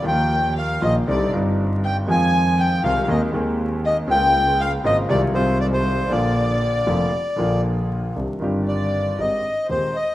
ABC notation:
X:1
M:4/4
L:1/16
Q:1/4=118
K:Bbmix
V:1 name="Bandoneon"
g4 f2 e2 d2 z4 g2 | a4 g2 f3/2 f/2 e2 z4 e2 | g4 f2 e2 d2 c2 d c3 | d12 z4 |
[K:Cm] z4 d4 e4 c2 e2 |]
V:2 name="Violin section"
g4 f2 e2 d2 z4 g2 | a4 g2 f3/2 f/2 e2 z4 e2 | g4 f2 e2 d2 c2 d c3 | d12 z4 |
[K:Cm] z4 d4 e4 c2 e2 |]
V:3 name="Grand piano" clef=bass
[E,,E,F,B,F]6 [B,,,B,,E,F,B,F]2 [C,,C,D,G,CE]2 [G,,,G,,G,CDE]6 | [F,,E,F,A,CF]6 [C,,C,E,A,CF]2 [E,,E,A,CA]2 [E,,E,A,CA]6 | [_D,,_D,A,B,F]6 [A,,,A,,D,A,B,F]2 [C,,C,E,A,CF]2 [C,,C,E,A,CF]6 | [B,,,B,,D,F,B,F]6 [F,,,F,,D,F,B,F]2 z2 [B,,,B,,D,F,B,F]6 |
[K:Cm] [C,,C,E,CDG]2 [G,,,G,,E,CDG]6 [A,,,A,,E,A,CG]2 z2 [E,,,E,,E,A,CG]2 z2 |]
V:4 name="Double bass" clef=bass
E,,6 B,,,2 C,,2 G,,,6 | F,,6 C,,2 E,,2 E,,6 | _D,,6 A,,,2 C,,2 C,,6 | B,,,6 F,,,2 z2 B,,,6 |
[K:Cm] C,,2 G,,,6 A,,,2 z2 E,,2 z2 |]